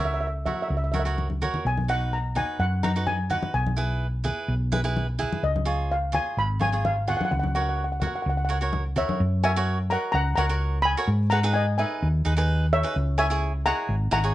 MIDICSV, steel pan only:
0, 0, Header, 1, 2, 480
1, 0, Start_track
1, 0, Tempo, 473560
1, 1668, Time_signature, 4, 2, 24, 8
1, 6944, Tempo, 469484
1, 14605, End_track
2, 0, Start_track
2, 0, Title_t, "Steel pan"
2, 0, Program_c, 0, 114
2, 54, Note_on_c, 0, 76, 69
2, 133, Note_off_c, 0, 76, 0
2, 143, Note_on_c, 0, 76, 60
2, 199, Note_off_c, 0, 76, 0
2, 211, Note_on_c, 0, 76, 65
2, 265, Note_off_c, 0, 76, 0
2, 277, Note_on_c, 0, 76, 53
2, 360, Note_off_c, 0, 76, 0
2, 463, Note_on_c, 0, 76, 68
2, 538, Note_off_c, 0, 76, 0
2, 549, Note_on_c, 0, 76, 48
2, 619, Note_off_c, 0, 76, 0
2, 632, Note_on_c, 0, 76, 65
2, 681, Note_off_c, 0, 76, 0
2, 693, Note_on_c, 0, 76, 50
2, 767, Note_off_c, 0, 76, 0
2, 778, Note_on_c, 0, 76, 57
2, 838, Note_off_c, 0, 76, 0
2, 850, Note_on_c, 0, 76, 51
2, 916, Note_off_c, 0, 76, 0
2, 928, Note_on_c, 0, 76, 56
2, 995, Note_off_c, 0, 76, 0
2, 1007, Note_on_c, 0, 76, 60
2, 1078, Note_off_c, 0, 76, 0
2, 1689, Note_on_c, 0, 80, 85
2, 1923, Note_on_c, 0, 78, 86
2, 1926, Note_off_c, 0, 80, 0
2, 2161, Note_on_c, 0, 82, 78
2, 2164, Note_off_c, 0, 78, 0
2, 2379, Note_off_c, 0, 82, 0
2, 2397, Note_on_c, 0, 80, 81
2, 2630, Note_on_c, 0, 78, 81
2, 2641, Note_off_c, 0, 80, 0
2, 2869, Note_on_c, 0, 82, 86
2, 2877, Note_off_c, 0, 78, 0
2, 3093, Note_off_c, 0, 82, 0
2, 3106, Note_on_c, 0, 80, 94
2, 3351, Note_on_c, 0, 78, 80
2, 3355, Note_off_c, 0, 80, 0
2, 3574, Note_off_c, 0, 78, 0
2, 3589, Note_on_c, 0, 80, 77
2, 4035, Note_off_c, 0, 80, 0
2, 5508, Note_on_c, 0, 75, 71
2, 5997, Note_on_c, 0, 77, 73
2, 6000, Note_off_c, 0, 75, 0
2, 6232, Note_on_c, 0, 80, 95
2, 6237, Note_off_c, 0, 77, 0
2, 6451, Note_off_c, 0, 80, 0
2, 6474, Note_on_c, 0, 83, 95
2, 6709, Note_on_c, 0, 80, 101
2, 6715, Note_off_c, 0, 83, 0
2, 6928, Note_off_c, 0, 80, 0
2, 6942, Note_on_c, 0, 77, 93
2, 7051, Note_off_c, 0, 77, 0
2, 7179, Note_on_c, 0, 78, 84
2, 7254, Note_off_c, 0, 78, 0
2, 7267, Note_on_c, 0, 78, 65
2, 7336, Note_off_c, 0, 78, 0
2, 7348, Note_on_c, 0, 78, 69
2, 7403, Note_off_c, 0, 78, 0
2, 7415, Note_on_c, 0, 78, 60
2, 7487, Note_off_c, 0, 78, 0
2, 7498, Note_on_c, 0, 78, 59
2, 7564, Note_off_c, 0, 78, 0
2, 7576, Note_on_c, 0, 78, 47
2, 7641, Note_off_c, 0, 78, 0
2, 7657, Note_on_c, 0, 78, 60
2, 7717, Note_off_c, 0, 78, 0
2, 7730, Note_on_c, 0, 78, 51
2, 7792, Note_off_c, 0, 78, 0
2, 7804, Note_on_c, 0, 78, 53
2, 7870, Note_off_c, 0, 78, 0
2, 7882, Note_on_c, 0, 78, 48
2, 7949, Note_off_c, 0, 78, 0
2, 7960, Note_on_c, 0, 78, 49
2, 8029, Note_off_c, 0, 78, 0
2, 8040, Note_on_c, 0, 78, 45
2, 8103, Note_off_c, 0, 78, 0
2, 8119, Note_on_c, 0, 78, 51
2, 8179, Note_off_c, 0, 78, 0
2, 8192, Note_on_c, 0, 78, 49
2, 8259, Note_off_c, 0, 78, 0
2, 8278, Note_on_c, 0, 78, 56
2, 8335, Note_off_c, 0, 78, 0
2, 8347, Note_on_c, 0, 78, 45
2, 8410, Note_off_c, 0, 78, 0
2, 8421, Note_on_c, 0, 78, 59
2, 8488, Note_off_c, 0, 78, 0
2, 8501, Note_on_c, 0, 78, 51
2, 8564, Note_off_c, 0, 78, 0
2, 8575, Note_on_c, 0, 78, 56
2, 8638, Note_off_c, 0, 78, 0
2, 8650, Note_on_c, 0, 78, 55
2, 8717, Note_off_c, 0, 78, 0
2, 9115, Note_on_c, 0, 76, 80
2, 9117, Note_on_c, 0, 73, 62
2, 9559, Note_off_c, 0, 76, 0
2, 9560, Note_off_c, 0, 73, 0
2, 9584, Note_on_c, 0, 80, 97
2, 9597, Note_on_c, 0, 76, 78
2, 10039, Note_off_c, 0, 76, 0
2, 10061, Note_on_c, 0, 82, 89
2, 10081, Note_off_c, 0, 80, 0
2, 10085, Note_on_c, 0, 78, 71
2, 10275, Note_off_c, 0, 82, 0
2, 10287, Note_on_c, 0, 82, 107
2, 10301, Note_off_c, 0, 78, 0
2, 10317, Note_on_c, 0, 78, 85
2, 10517, Note_off_c, 0, 82, 0
2, 10529, Note_on_c, 0, 82, 98
2, 10536, Note_off_c, 0, 78, 0
2, 10553, Note_on_c, 0, 78, 91
2, 10984, Note_off_c, 0, 82, 0
2, 10997, Note_off_c, 0, 78, 0
2, 11007, Note_on_c, 0, 83, 117
2, 11038, Note_on_c, 0, 80, 99
2, 11462, Note_off_c, 0, 83, 0
2, 11479, Note_off_c, 0, 80, 0
2, 11493, Note_on_c, 0, 82, 105
2, 11520, Note_on_c, 0, 78, 80
2, 11604, Note_off_c, 0, 82, 0
2, 11625, Note_off_c, 0, 78, 0
2, 11734, Note_on_c, 0, 80, 83
2, 11754, Note_on_c, 0, 75, 69
2, 11963, Note_off_c, 0, 80, 0
2, 11973, Note_off_c, 0, 75, 0
2, 11981, Note_on_c, 0, 80, 82
2, 11996, Note_on_c, 0, 76, 69
2, 12661, Note_off_c, 0, 80, 0
2, 12669, Note_off_c, 0, 76, 0
2, 12952, Note_on_c, 0, 76, 106
2, 12959, Note_on_c, 0, 73, 74
2, 13398, Note_off_c, 0, 73, 0
2, 13414, Note_off_c, 0, 76, 0
2, 13417, Note_on_c, 0, 80, 104
2, 13426, Note_on_c, 0, 76, 86
2, 13866, Note_off_c, 0, 80, 0
2, 13870, Note_off_c, 0, 76, 0
2, 13903, Note_on_c, 0, 82, 112
2, 13908, Note_on_c, 0, 78, 86
2, 14348, Note_off_c, 0, 82, 0
2, 14351, Note_off_c, 0, 78, 0
2, 14383, Note_on_c, 0, 82, 121
2, 14388, Note_on_c, 0, 78, 85
2, 14605, Note_off_c, 0, 78, 0
2, 14605, Note_off_c, 0, 82, 0
2, 14605, End_track
0, 0, End_of_file